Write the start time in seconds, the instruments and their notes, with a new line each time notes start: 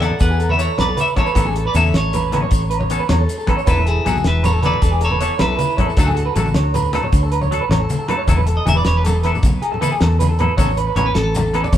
0.00 clean electric guitar E3 B3 E4 A4 D5 F#5, snare, closed hi-hat, high conga, low agogo
0.10 low conga
0.20 fingered electric bass E2, clean electric guitar A4 B4 F#5, kick, closed hi-hat, maracas
0.30 clean electric guitar G#4
0.39 clean electric guitar A4, closed hi-hat, low agogo, maracas
0.49 clean electric guitar B4 C#5 E5, high conga, low conga
0.58 clean electric guitar E3 E4 A4 C#5, muted clean electric guitar stroke, closed hi-hat, maracas
0.78 fingered electric bass B1, clean electric guitar B4 D5, snare, closed hi-hat, low conga, low agogo, maracas
0.87 clean electric guitar A4
0.97 clean electric guitar B4 C#5, closed hi-hat, high conga, maracas
1.01 clean electric guitar E5
1.07 maracas
1.16 clean electric guitar E3 B3 E4 A4 C#5, kick, closed hi-hat, low conga, low agogo
1.26 clean electric guitar B4, maracas
1.35 fingered electric bass A1, clean electric guitar E3 B3 C#4 A4, kick, closed hi-hat, high conga, low agogo, maracas
1.45 clean electric guitar G#4, low conga
1.56 clean electric guitar A4, closed hi-hat, low conga
1.65 clean electric guitar B4 D5, low conga
1.74 fingered electric bass E2, clean electric guitar B3 C#4 A4 C#5 E5, closed hi-hat, low conga, low agogo, maracas
1.84 high conga, maracas
1.93 fingered electric bass A1, clean electric guitar A4 C#5, snare, closed hi-hat
2.13 clean electric guitar B4, closed hi-hat, low conga, low agogo, maracas
2.32 clean electric guitar E3 B3 C#4 B4, snare, closed hi-hat, high conga, low agogo
2.42 clean electric guitar C#5, low conga
2.51 fingered electric bass A1, kick, closed hi-hat, maracas
2.61 muted clean electric guitar stroke
2.70 clean electric guitar B4, closed hi-hat, low agogo, maracas
2.80 clean electric guitar C#5, high conga, low conga
2.90 clean electric guitar E3 B3 C#4 A4, closed hi-hat, maracas
2.99 clean electric guitar B4
3.09 fingered electric bass E2, clean electric guitar C#5, snare, closed hi-hat, low conga, low agogo, maracas
3.18 clean electric guitar A4
3.29 closed hi-hat, maracas
3.38 clean electric guitar A4, maracas
3.47 clean electric guitar E3 B3 C#4 A4 B4, kick, closed hi-hat, low conga, low agogo
3.57 clean electric guitar C#5, maracas
3.67 fingered electric bass E1, clean electric guitar E3 B3 E4 A4 B4, kick, closed hi-hat, high conga, low agogo, maracas
3.77 low conga
3.86 clean electric guitar E4 G#4 A4, closed hi-hat, low conga
3.96 low conga
4.05 fingered electric bass B1, clean electric guitar E3 B3 E4 F#4 G#4 A4, closed hi-hat, low conga, low agogo, maracas
4.16 high conga, maracas
4.24 fingered electric bass E1, clean electric guitar E4 B4, snare, closed hi-hat
4.43 clean electric guitar A4 B4 C#5, closed hi-hat, low conga, low agogo, maracas
4.54 clean electric guitar A4
4.62 clean electric guitar E3 B3 E4 A4 B4 D5, closed hi-hat, high conga, low agogo
4.73 low conga
4.82 fingered electric bass E1, clean electric guitar A4, kick, closed hi-hat, maracas
4.92 clean electric guitar G#4
5.01 clean electric guitar A4 C#5, closed hi-hat, low agogo, maracas
5.10 clean electric guitar B4, high conga, low conga
5.20 clean electric guitar E3 B3 E4 A4 C#5, closed hi-hat, maracas
5.39 fingered electric bass B1, clean electric guitar E4 B4, snare, closed hi-hat, low conga, low agogo, maracas
5.48 clean electric guitar A4
5.57 clean electric guitar B4, closed hi-hat, high conga, maracas
5.71 maracas
5.77 clean electric guitar E3 B3 E4 A4 C#5, kick, closed hi-hat, low conga, low agogo
5.87 clean electric guitar A4, maracas
5.97 fingered electric bass D2, clean electric guitar F#3 A3 D4 F#4 A4, kick, closed hi-hat, high conga, low agogo, maracas
6.06 clean electric guitar G#4, low conga
6.16 clean electric guitar A4, closed hi-hat, low conga, maracas
6.26 clean electric guitar B4
6.36 fingered electric bass A1, clean electric guitar F#3 A3 D4 A4, closed hi-hat, low conga, low agogo, maracas
6.46 high conga, low conga, maracas
6.54 fingered electric bass D2, clean electric guitar C#5, snare, closed hi-hat, low conga
6.74 clean electric guitar B4, closed hi-hat, low conga, low agogo, maracas
6.84 low conga, maracas
6.93 clean electric guitar F#3 A3 D4 A4 B4, snare, closed hi-hat, high conga, low conga, low agogo, maracas
7.03 clean electric guitar C#5, low conga
7.13 fingered electric bass D2, kick, closed hi-hat, maracas
7.23 clean electric guitar A4, low conga
7.32 clean electric guitar B4, closed hi-hat, low conga, low agogo
7.41 clean electric guitar C#5, high conga, low conga, maracas
7.51 clean electric guitar F#3 D4 A4, closed hi-hat
7.61 clean electric guitar B4, low conga
7.69 fingered electric bass A1, clean electric guitar C#5, snare, closed hi-hat, low conga, low agogo
7.80 clean electric guitar A4
7.90 closed hi-hat, high conga, low conga, maracas
7.99 clean electric guitar A4, low conga
8.08 clean electric guitar F#3 A3 D4 A4 B4, closed hi-hat, low conga, low agogo
8.18 clean electric guitar C#5
8.27 fingered electric bass E1, clean electric guitar E3 B3 E4 A4, muted clean electric guitar stroke, kick, closed hi-hat, high conga, low conga, low agogo, maracas
8.37 clean electric guitar B4, low conga
8.46 clean electric guitar A4, closed hi-hat, maracas
8.57 clean electric guitar D#5
8.65 fingered electric bass E1, clean electric guitar E3 B3 E4 G#4 E5, closed hi-hat, high conga, low conga, low agogo, maracas
8.75 clean electric guitar B4 D5, low conga
8.85 fingered electric bass E1, clean electric guitar B4 C#5, snare, closed hi-hat
8.97 clean electric guitar B4, low conga
9.04 clean electric guitar A4, closed hi-hat, low conga, low agogo, maracas
9.23 clean electric guitar E3 B3 E4 A4 B4, snare, closed hi-hat, low agogo
9.33 muted clean electric guitar stroke, low conga, maracas
9.43 fingered electric bass B1, kick, closed hi-hat, high conga, maracas
9.62 clean electric guitar G#4, closed hi-hat, low agogo
9.72 clean electric guitar A4, low conga
9.81 clean electric guitar E3 B3 E4 A4 B4, closed hi-hat, high conga, maracas
9.92 clean electric guitar G#4, low conga
10.00 fingered electric bass E2, clean electric guitar A4, snare, closed hi-hat, low conga, low agogo
10.19 clean electric guitar B4, closed hi-hat, high conga, maracas
10.29 clean electric guitar A4
10.39 clean electric guitar E3 B3 E4 A4 B4, closed hi-hat, low conga, low agogo
10.51 low conga
10.57 fingered electric bass A1, clean electric guitar E3 B3 C#4 A4 C#5, kick, closed hi-hat, high conga, low conga, low agogo, maracas
10.69 low conga
10.77 clean electric guitar B4, closed hi-hat, maracas
10.87 clean electric guitar B4
10.96 fingered electric bass A1, clean electric guitar E3 B3 C#4 B4 C#5, closed hi-hat, high conga, low conga, low agogo
11.06 clean electric guitar B4, low conga
11.14 fingered electric bass A1, clean electric guitar A4, snare, closed hi-hat
11.23 clean electric guitar A4, low conga
11.35 clean electric guitar A4, closed hi-hat, high conga, low conga, low agogo, maracas
11.53 clean electric guitar E3 B3 C#4 A4 B4, closed hi-hat, low conga, low agogo
11.64 clean electric guitar D5, low conga, maracas
11.73 fingered electric bass E2, clean electric guitar C#5, kick, closed hi-hat, high conga, maracas